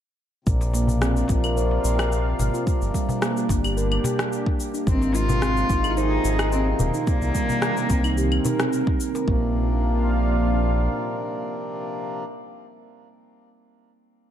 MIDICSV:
0, 0, Header, 1, 8, 480
1, 0, Start_track
1, 0, Tempo, 550459
1, 408, Time_signature, 4, 2, 24, 8
1, 12477, End_track
2, 0, Start_track
2, 0, Title_t, "Steel tongue drum"
2, 0, Program_c, 0, 114
2, 649, Note_on_c, 0, 58, 63
2, 877, Note_off_c, 0, 58, 0
2, 887, Note_on_c, 0, 60, 77
2, 1117, Note_off_c, 0, 60, 0
2, 1128, Note_on_c, 0, 65, 68
2, 1200, Note_off_c, 0, 65, 0
2, 1257, Note_on_c, 0, 70, 74
2, 1321, Note_off_c, 0, 70, 0
2, 1369, Note_on_c, 0, 72, 79
2, 1489, Note_off_c, 0, 72, 0
2, 1609, Note_on_c, 0, 70, 69
2, 2077, Note_off_c, 0, 70, 0
2, 2214, Note_on_c, 0, 65, 71
2, 2279, Note_off_c, 0, 65, 0
2, 2570, Note_on_c, 0, 55, 65
2, 2798, Note_off_c, 0, 55, 0
2, 2807, Note_on_c, 0, 58, 80
2, 3036, Note_off_c, 0, 58, 0
2, 3049, Note_on_c, 0, 62, 68
2, 3121, Note_off_c, 0, 62, 0
2, 3174, Note_on_c, 0, 67, 66
2, 3239, Note_off_c, 0, 67, 0
2, 3289, Note_on_c, 0, 70, 84
2, 3408, Note_off_c, 0, 70, 0
2, 3529, Note_on_c, 0, 67, 70
2, 3997, Note_off_c, 0, 67, 0
2, 4133, Note_on_c, 0, 62, 74
2, 4198, Note_off_c, 0, 62, 0
2, 4487, Note_on_c, 0, 56, 67
2, 4716, Note_off_c, 0, 56, 0
2, 4728, Note_on_c, 0, 60, 84
2, 4957, Note_off_c, 0, 60, 0
2, 4968, Note_on_c, 0, 63, 71
2, 5040, Note_off_c, 0, 63, 0
2, 5094, Note_on_c, 0, 68, 72
2, 5159, Note_off_c, 0, 68, 0
2, 5209, Note_on_c, 0, 72, 82
2, 5329, Note_off_c, 0, 72, 0
2, 5449, Note_on_c, 0, 68, 76
2, 5917, Note_off_c, 0, 68, 0
2, 6054, Note_on_c, 0, 63, 74
2, 6119, Note_off_c, 0, 63, 0
2, 6409, Note_on_c, 0, 55, 71
2, 6637, Note_off_c, 0, 55, 0
2, 6649, Note_on_c, 0, 58, 78
2, 6877, Note_off_c, 0, 58, 0
2, 6888, Note_on_c, 0, 60, 73
2, 6960, Note_off_c, 0, 60, 0
2, 7014, Note_on_c, 0, 63, 70
2, 7079, Note_off_c, 0, 63, 0
2, 7130, Note_on_c, 0, 67, 79
2, 7249, Note_off_c, 0, 67, 0
2, 7369, Note_on_c, 0, 63, 89
2, 7482, Note_off_c, 0, 63, 0
2, 7494, Note_on_c, 0, 60, 100
2, 7602, Note_off_c, 0, 60, 0
2, 7976, Note_on_c, 0, 70, 73
2, 8083, Note_off_c, 0, 70, 0
2, 8089, Note_on_c, 0, 58, 85
2, 8312, Note_off_c, 0, 58, 0
2, 12477, End_track
3, 0, Start_track
3, 0, Title_t, "Analog synth pad"
3, 0, Program_c, 1, 89
3, 408, Note_on_c, 1, 46, 89
3, 614, Note_on_c, 1, 65, 81
3, 885, Note_on_c, 1, 58, 85
3, 1248, Note_on_c, 1, 60, 74
3, 1285, Note_on_c, 1, 77, 80
3, 2328, Note_off_c, 1, 46, 0
3, 2507, Note_on_c, 1, 62, 80
3, 2923, Note_on_c, 1, 67, 90
3, 3100, Note_off_c, 1, 65, 0
3, 3102, Note_off_c, 1, 77, 0
3, 3103, Note_off_c, 1, 60, 0
3, 4246, Note_on_c, 1, 60, 78
3, 4247, Note_off_c, 1, 62, 0
3, 4247, Note_off_c, 1, 67, 0
3, 4798, Note_on_c, 1, 51, 101
3, 5022, Note_off_c, 1, 58, 0
3, 5118, Note_on_c, 1, 68, 80
3, 6165, Note_on_c, 1, 48, 88
3, 6169, Note_off_c, 1, 68, 0
3, 7037, Note_on_c, 1, 70, 75
3, 8087, Note_off_c, 1, 48, 0
3, 8087, Note_off_c, 1, 60, 0
3, 8088, Note_off_c, 1, 51, 0
3, 8088, Note_off_c, 1, 70, 0
3, 8092, Note_on_c, 1, 46, 81
3, 8167, Note_on_c, 1, 58, 85
3, 8241, Note_on_c, 1, 62, 79
3, 8310, Note_on_c, 1, 65, 80
3, 8386, Note_on_c, 1, 77, 82
3, 10672, Note_off_c, 1, 58, 0
3, 10673, Note_off_c, 1, 46, 0
3, 10673, Note_off_c, 1, 62, 0
3, 10673, Note_off_c, 1, 65, 0
3, 10675, Note_off_c, 1, 77, 0
3, 12477, End_track
4, 0, Start_track
4, 0, Title_t, "Cello"
4, 0, Program_c, 2, 42
4, 4256, Note_on_c, 2, 60, 97
4, 4490, Note_on_c, 2, 65, 118
4, 4503, Note_off_c, 2, 60, 0
4, 5150, Note_off_c, 2, 65, 0
4, 5150, Note_on_c, 2, 65, 75
4, 5209, Note_on_c, 2, 63, 106
4, 5222, Note_off_c, 2, 65, 0
4, 5684, Note_off_c, 2, 63, 0
4, 5689, Note_on_c, 2, 60, 93
4, 5797, Note_off_c, 2, 60, 0
4, 5932, Note_on_c, 2, 58, 102
4, 7575, Note_off_c, 2, 58, 0
4, 12477, End_track
5, 0, Start_track
5, 0, Title_t, "Harmonium"
5, 0, Program_c, 3, 20
5, 388, Note_on_c, 3, 48, 74
5, 400, Note_on_c, 3, 53, 66
5, 412, Note_on_c, 3, 58, 70
5, 423, Note_on_c, 3, 62, 80
5, 1091, Note_off_c, 3, 48, 0
5, 1097, Note_off_c, 3, 53, 0
5, 1103, Note_off_c, 3, 58, 0
5, 1108, Note_off_c, 3, 62, 0
5, 1110, Note_on_c, 3, 48, 99
5, 1121, Note_on_c, 3, 53, 91
5, 1133, Note_on_c, 3, 58, 95
5, 1143, Note_on_c, 3, 62, 111
5, 2292, Note_off_c, 3, 48, 0
5, 2297, Note_off_c, 3, 53, 0
5, 2303, Note_off_c, 3, 58, 0
5, 2308, Note_off_c, 3, 62, 0
5, 2310, Note_on_c, 3, 48, 99
5, 2321, Note_on_c, 3, 53, 92
5, 2334, Note_on_c, 3, 58, 88
5, 2344, Note_on_c, 3, 62, 104
5, 3012, Note_off_c, 3, 48, 0
5, 3017, Note_off_c, 3, 53, 0
5, 3024, Note_off_c, 3, 58, 0
5, 3029, Note_off_c, 3, 62, 0
5, 3037, Note_on_c, 3, 48, 70
5, 3044, Note_on_c, 3, 53, 64
5, 3050, Note_on_c, 3, 58, 64
5, 3055, Note_on_c, 3, 62, 76
5, 3141, Note_off_c, 3, 48, 0
5, 3144, Note_off_c, 3, 53, 0
5, 3147, Note_off_c, 3, 58, 0
5, 3150, Note_off_c, 3, 62, 0
5, 4229, Note_on_c, 3, 48, 77
5, 4240, Note_on_c, 3, 53, 67
5, 4252, Note_on_c, 3, 58, 69
5, 4263, Note_on_c, 3, 63, 83
5, 4931, Note_off_c, 3, 48, 0
5, 4937, Note_off_c, 3, 53, 0
5, 4943, Note_off_c, 3, 58, 0
5, 4945, Note_on_c, 3, 48, 104
5, 4949, Note_off_c, 3, 63, 0
5, 4957, Note_on_c, 3, 53, 98
5, 4969, Note_on_c, 3, 58, 102
5, 4981, Note_on_c, 3, 63, 117
5, 6129, Note_off_c, 3, 48, 0
5, 6135, Note_off_c, 3, 53, 0
5, 6141, Note_off_c, 3, 58, 0
5, 6147, Note_off_c, 3, 63, 0
5, 6148, Note_on_c, 3, 48, 97
5, 6158, Note_on_c, 3, 53, 92
5, 6170, Note_on_c, 3, 58, 92
5, 6182, Note_on_c, 3, 62, 107
5, 6851, Note_off_c, 3, 48, 0
5, 6856, Note_off_c, 3, 53, 0
5, 6862, Note_off_c, 3, 58, 0
5, 6868, Note_off_c, 3, 62, 0
5, 6879, Note_on_c, 3, 48, 72
5, 6886, Note_on_c, 3, 53, 64
5, 6891, Note_on_c, 3, 58, 66
5, 6896, Note_on_c, 3, 62, 80
5, 6982, Note_off_c, 3, 48, 0
5, 6985, Note_off_c, 3, 53, 0
5, 6988, Note_off_c, 3, 58, 0
5, 6990, Note_off_c, 3, 62, 0
5, 8064, Note_on_c, 3, 48, 93
5, 8082, Note_on_c, 3, 53, 79
5, 8099, Note_on_c, 3, 58, 86
5, 8117, Note_on_c, 3, 62, 102
5, 10659, Note_off_c, 3, 48, 0
5, 10668, Note_off_c, 3, 53, 0
5, 10676, Note_off_c, 3, 58, 0
5, 10685, Note_off_c, 3, 62, 0
5, 12477, End_track
6, 0, Start_track
6, 0, Title_t, "Analog synth bass"
6, 0, Program_c, 4, 38
6, 409, Note_on_c, 4, 34, 92
6, 1081, Note_off_c, 4, 34, 0
6, 1129, Note_on_c, 4, 34, 83
6, 1561, Note_off_c, 4, 34, 0
6, 1608, Note_on_c, 4, 34, 83
6, 2040, Note_off_c, 4, 34, 0
6, 2088, Note_on_c, 4, 32, 94
6, 2182, Note_off_c, 4, 32, 0
6, 2455, Note_on_c, 4, 31, 85
6, 2539, Note_off_c, 4, 31, 0
6, 3047, Note_on_c, 4, 31, 92
6, 3480, Note_off_c, 4, 31, 0
6, 4247, Note_on_c, 4, 32, 92
6, 4920, Note_off_c, 4, 32, 0
6, 4967, Note_on_c, 4, 32, 87
6, 5400, Note_off_c, 4, 32, 0
6, 5447, Note_on_c, 4, 32, 90
6, 5880, Note_off_c, 4, 32, 0
6, 5926, Note_on_c, 4, 27, 91
6, 6020, Note_off_c, 4, 27, 0
6, 6294, Note_on_c, 4, 36, 91
6, 6378, Note_off_c, 4, 36, 0
6, 6889, Note_on_c, 4, 36, 86
6, 7321, Note_off_c, 4, 36, 0
6, 8090, Note_on_c, 4, 34, 85
6, 9494, Note_off_c, 4, 34, 0
6, 12477, End_track
7, 0, Start_track
7, 0, Title_t, "Darbuka"
7, 531, Note_on_c, 9, 63, 58
7, 618, Note_off_c, 9, 63, 0
7, 640, Note_on_c, 9, 62, 66
7, 728, Note_off_c, 9, 62, 0
7, 764, Note_on_c, 9, 64, 84
7, 852, Note_off_c, 9, 64, 0
7, 1115, Note_on_c, 9, 63, 60
7, 1127, Note_on_c, 9, 62, 67
7, 1202, Note_off_c, 9, 63, 0
7, 1215, Note_off_c, 9, 62, 0
7, 1492, Note_on_c, 9, 62, 59
7, 1580, Note_off_c, 9, 62, 0
7, 2087, Note_on_c, 9, 62, 67
7, 2091, Note_on_c, 9, 64, 78
7, 2174, Note_off_c, 9, 62, 0
7, 2178, Note_off_c, 9, 64, 0
7, 2572, Note_on_c, 9, 62, 62
7, 2659, Note_off_c, 9, 62, 0
7, 2691, Note_on_c, 9, 64, 91
7, 2778, Note_off_c, 9, 64, 0
7, 3053, Note_on_c, 9, 63, 62
7, 3054, Note_on_c, 9, 62, 63
7, 3140, Note_off_c, 9, 63, 0
7, 3142, Note_off_c, 9, 62, 0
7, 3523, Note_on_c, 9, 64, 92
7, 3524, Note_on_c, 9, 63, 66
7, 3526, Note_on_c, 9, 62, 62
7, 3610, Note_off_c, 9, 64, 0
7, 3612, Note_off_c, 9, 63, 0
7, 3613, Note_off_c, 9, 62, 0
7, 4133, Note_on_c, 9, 62, 37
7, 4220, Note_off_c, 9, 62, 0
7, 4374, Note_on_c, 9, 63, 56
7, 4461, Note_off_c, 9, 63, 0
7, 4490, Note_on_c, 9, 62, 59
7, 4577, Note_off_c, 9, 62, 0
7, 4617, Note_on_c, 9, 64, 93
7, 4704, Note_off_c, 9, 64, 0
7, 4964, Note_on_c, 9, 62, 65
7, 4967, Note_on_c, 9, 63, 66
7, 5051, Note_off_c, 9, 62, 0
7, 5054, Note_off_c, 9, 63, 0
7, 5330, Note_on_c, 9, 62, 54
7, 5417, Note_off_c, 9, 62, 0
7, 5926, Note_on_c, 9, 62, 61
7, 5927, Note_on_c, 9, 64, 93
7, 6014, Note_off_c, 9, 62, 0
7, 6014, Note_off_c, 9, 64, 0
7, 6415, Note_on_c, 9, 62, 63
7, 6502, Note_off_c, 9, 62, 0
7, 6535, Note_on_c, 9, 64, 81
7, 6622, Note_off_c, 9, 64, 0
7, 6878, Note_on_c, 9, 62, 58
7, 6887, Note_on_c, 9, 63, 61
7, 6965, Note_off_c, 9, 62, 0
7, 6974, Note_off_c, 9, 63, 0
7, 7366, Note_on_c, 9, 62, 55
7, 7369, Note_on_c, 9, 64, 82
7, 7374, Note_on_c, 9, 63, 56
7, 7453, Note_off_c, 9, 62, 0
7, 7456, Note_off_c, 9, 64, 0
7, 7462, Note_off_c, 9, 63, 0
7, 7496, Note_on_c, 9, 63, 35
7, 7583, Note_off_c, 9, 63, 0
7, 7738, Note_on_c, 9, 62, 34
7, 7826, Note_off_c, 9, 62, 0
7, 7976, Note_on_c, 9, 62, 39
7, 7979, Note_on_c, 9, 63, 62
7, 8063, Note_off_c, 9, 62, 0
7, 8066, Note_off_c, 9, 63, 0
7, 12477, End_track
8, 0, Start_track
8, 0, Title_t, "Drums"
8, 408, Note_on_c, 9, 36, 111
8, 409, Note_on_c, 9, 82, 40
8, 495, Note_off_c, 9, 36, 0
8, 496, Note_off_c, 9, 82, 0
8, 536, Note_on_c, 9, 82, 28
8, 623, Note_off_c, 9, 82, 0
8, 650, Note_on_c, 9, 82, 71
8, 737, Note_off_c, 9, 82, 0
8, 776, Note_on_c, 9, 82, 32
8, 864, Note_off_c, 9, 82, 0
8, 887, Note_on_c, 9, 37, 78
8, 888, Note_on_c, 9, 82, 43
8, 974, Note_off_c, 9, 37, 0
8, 976, Note_off_c, 9, 82, 0
8, 1017, Note_on_c, 9, 82, 27
8, 1104, Note_off_c, 9, 82, 0
8, 1128, Note_on_c, 9, 36, 91
8, 1130, Note_on_c, 9, 82, 74
8, 1216, Note_off_c, 9, 36, 0
8, 1217, Note_off_c, 9, 82, 0
8, 1255, Note_on_c, 9, 75, 73
8, 1256, Note_on_c, 9, 82, 31
8, 1342, Note_off_c, 9, 75, 0
8, 1343, Note_off_c, 9, 82, 0
8, 1370, Note_on_c, 9, 82, 39
8, 1457, Note_off_c, 9, 82, 0
8, 1610, Note_on_c, 9, 82, 73
8, 1698, Note_off_c, 9, 82, 0
8, 1736, Note_on_c, 9, 37, 74
8, 1736, Note_on_c, 9, 75, 60
8, 1738, Note_on_c, 9, 82, 32
8, 1824, Note_off_c, 9, 37, 0
8, 1824, Note_off_c, 9, 75, 0
8, 1825, Note_off_c, 9, 82, 0
8, 1850, Note_on_c, 9, 82, 40
8, 1937, Note_off_c, 9, 82, 0
8, 2090, Note_on_c, 9, 82, 75
8, 2177, Note_off_c, 9, 82, 0
8, 2216, Note_on_c, 9, 82, 32
8, 2304, Note_off_c, 9, 82, 0
8, 2328, Note_on_c, 9, 36, 112
8, 2331, Note_on_c, 9, 82, 44
8, 2415, Note_off_c, 9, 36, 0
8, 2418, Note_off_c, 9, 82, 0
8, 2456, Note_on_c, 9, 82, 29
8, 2543, Note_off_c, 9, 82, 0
8, 2567, Note_on_c, 9, 36, 61
8, 2571, Note_on_c, 9, 82, 77
8, 2654, Note_off_c, 9, 36, 0
8, 2658, Note_off_c, 9, 82, 0
8, 2699, Note_on_c, 9, 82, 32
8, 2786, Note_off_c, 9, 82, 0
8, 2809, Note_on_c, 9, 37, 76
8, 2811, Note_on_c, 9, 82, 45
8, 2896, Note_off_c, 9, 37, 0
8, 2898, Note_off_c, 9, 82, 0
8, 2938, Note_on_c, 9, 82, 31
8, 3026, Note_off_c, 9, 82, 0
8, 3047, Note_on_c, 9, 36, 96
8, 3052, Note_on_c, 9, 82, 79
8, 3134, Note_off_c, 9, 36, 0
8, 3139, Note_off_c, 9, 82, 0
8, 3178, Note_on_c, 9, 75, 76
8, 3180, Note_on_c, 9, 82, 34
8, 3265, Note_off_c, 9, 75, 0
8, 3267, Note_off_c, 9, 82, 0
8, 3292, Note_on_c, 9, 82, 43
8, 3380, Note_off_c, 9, 82, 0
8, 3415, Note_on_c, 9, 75, 57
8, 3502, Note_off_c, 9, 75, 0
8, 3531, Note_on_c, 9, 82, 82
8, 3618, Note_off_c, 9, 82, 0
8, 3655, Note_on_c, 9, 37, 78
8, 3657, Note_on_c, 9, 82, 32
8, 3742, Note_off_c, 9, 37, 0
8, 3744, Note_off_c, 9, 82, 0
8, 3772, Note_on_c, 9, 82, 43
8, 3859, Note_off_c, 9, 82, 0
8, 3893, Note_on_c, 9, 36, 107
8, 3980, Note_off_c, 9, 36, 0
8, 4011, Note_on_c, 9, 82, 75
8, 4098, Note_off_c, 9, 82, 0
8, 4137, Note_on_c, 9, 82, 34
8, 4224, Note_off_c, 9, 82, 0
8, 4247, Note_on_c, 9, 36, 125
8, 4250, Note_on_c, 9, 82, 45
8, 4334, Note_off_c, 9, 36, 0
8, 4338, Note_off_c, 9, 82, 0
8, 4377, Note_on_c, 9, 82, 30
8, 4464, Note_off_c, 9, 82, 0
8, 4490, Note_on_c, 9, 82, 79
8, 4577, Note_off_c, 9, 82, 0
8, 4615, Note_on_c, 9, 82, 33
8, 4702, Note_off_c, 9, 82, 0
8, 4727, Note_on_c, 9, 37, 78
8, 4729, Note_on_c, 9, 82, 47
8, 4814, Note_off_c, 9, 37, 0
8, 4816, Note_off_c, 9, 82, 0
8, 4855, Note_on_c, 9, 82, 29
8, 4942, Note_off_c, 9, 82, 0
8, 4967, Note_on_c, 9, 36, 96
8, 4968, Note_on_c, 9, 82, 74
8, 5054, Note_off_c, 9, 36, 0
8, 5055, Note_off_c, 9, 82, 0
8, 5093, Note_on_c, 9, 75, 75
8, 5095, Note_on_c, 9, 82, 34
8, 5181, Note_off_c, 9, 75, 0
8, 5182, Note_off_c, 9, 82, 0
8, 5209, Note_on_c, 9, 82, 43
8, 5296, Note_off_c, 9, 82, 0
8, 5448, Note_on_c, 9, 82, 77
8, 5535, Note_off_c, 9, 82, 0
8, 5573, Note_on_c, 9, 37, 74
8, 5573, Note_on_c, 9, 75, 55
8, 5575, Note_on_c, 9, 82, 34
8, 5661, Note_off_c, 9, 37, 0
8, 5661, Note_off_c, 9, 75, 0
8, 5662, Note_off_c, 9, 82, 0
8, 5688, Note_on_c, 9, 82, 44
8, 5775, Note_off_c, 9, 82, 0
8, 5926, Note_on_c, 9, 82, 75
8, 6013, Note_off_c, 9, 82, 0
8, 6053, Note_on_c, 9, 82, 33
8, 6140, Note_off_c, 9, 82, 0
8, 6168, Note_on_c, 9, 36, 125
8, 6169, Note_on_c, 9, 82, 41
8, 6255, Note_off_c, 9, 36, 0
8, 6256, Note_off_c, 9, 82, 0
8, 6295, Note_on_c, 9, 82, 29
8, 6382, Note_off_c, 9, 82, 0
8, 6408, Note_on_c, 9, 36, 59
8, 6409, Note_on_c, 9, 82, 78
8, 6495, Note_off_c, 9, 36, 0
8, 6496, Note_off_c, 9, 82, 0
8, 6535, Note_on_c, 9, 82, 33
8, 6622, Note_off_c, 9, 82, 0
8, 6646, Note_on_c, 9, 37, 78
8, 6648, Note_on_c, 9, 82, 46
8, 6733, Note_off_c, 9, 37, 0
8, 6735, Note_off_c, 9, 82, 0
8, 6775, Note_on_c, 9, 82, 30
8, 6862, Note_off_c, 9, 82, 0
8, 6887, Note_on_c, 9, 82, 73
8, 6888, Note_on_c, 9, 36, 100
8, 6974, Note_off_c, 9, 82, 0
8, 6976, Note_off_c, 9, 36, 0
8, 7012, Note_on_c, 9, 75, 68
8, 7014, Note_on_c, 9, 82, 32
8, 7100, Note_off_c, 9, 75, 0
8, 7101, Note_off_c, 9, 82, 0
8, 7130, Note_on_c, 9, 82, 43
8, 7217, Note_off_c, 9, 82, 0
8, 7253, Note_on_c, 9, 75, 55
8, 7340, Note_off_c, 9, 75, 0
8, 7368, Note_on_c, 9, 82, 84
8, 7456, Note_off_c, 9, 82, 0
8, 7495, Note_on_c, 9, 37, 75
8, 7497, Note_on_c, 9, 82, 34
8, 7583, Note_off_c, 9, 37, 0
8, 7584, Note_off_c, 9, 82, 0
8, 7611, Note_on_c, 9, 82, 45
8, 7699, Note_off_c, 9, 82, 0
8, 7736, Note_on_c, 9, 36, 113
8, 7823, Note_off_c, 9, 36, 0
8, 7850, Note_on_c, 9, 82, 79
8, 7937, Note_off_c, 9, 82, 0
8, 7978, Note_on_c, 9, 82, 33
8, 8065, Note_off_c, 9, 82, 0
8, 8089, Note_on_c, 9, 36, 109
8, 8176, Note_off_c, 9, 36, 0
8, 12477, End_track
0, 0, End_of_file